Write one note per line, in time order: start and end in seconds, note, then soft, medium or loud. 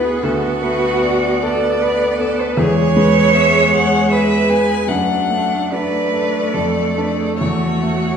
0.00 0.19 D2 medium
0.00 0.26 F#3 soft
0.00 0.26 B3 soft
0.00 2.60 B3 medium
0.00 0.26 F#4 soft
0.00 0.24 G#4 medium
0.00 0.25 B4 medium
0.00 0.26 B4 soft
0.23 2.54 D2 medium
0.23 1.42 F#4 medium
0.23 0.64 A4 medium
0.62 1.27 A3 soft
0.62 1.04 B4 medium
1.02 1.67 B3 soft
1.02 1.44 D5 medium
1.42 1.83 A4 medium
1.42 2.05 A4 medium
1.42 2.43 D5 medium
1.82 2.19 B4 medium
1.82 2.43 B4 soft
2.20 2.58 B3 soft
2.20 2.60 A4 medium
2.42 2.60 B4 medium
2.57 4.85 E2 medium
2.57 4.90 G#3 medium
2.57 2.98 G#4 medium
2.57 4.14 C#5 loud
2.96 3.58 G#3 medium
2.96 3.35 B4 medium
3.34 3.96 B3 soft
3.34 3.73 E5 medium
3.73 4.34 G#4 medium
3.73 4.10 F#5 medium
4.11 4.74 B4 soft
4.11 4.87 B4 medium
4.11 4.51 E5 medium
4.49 4.89 B3 soft
4.49 4.90 G#5 medium
4.88 6.50 F#2 medium
4.88 8.17 A3 medium
4.88 5.74 D4 medium
4.88 5.73 F#5 medium
5.30 5.98 A3 soft
5.72 6.38 D4 soft
5.72 6.55 B4 medium
5.72 7.37 D5 medium
6.13 6.54 A4 soft
6.53 7.38 F2 soft
6.53 6.99 A4 medium
6.97 7.37 D4 soft
6.97 7.37 A4 soft
6.97 7.09 B4 soft
7.08 7.20 A4 soft
7.18 7.29 G#4 soft
7.27 7.36 A4 soft
7.37 8.17 F#4 medium
7.37 8.17 C#5 soft
7.41 8.17 E2 soft
7.83 8.17 A3 soft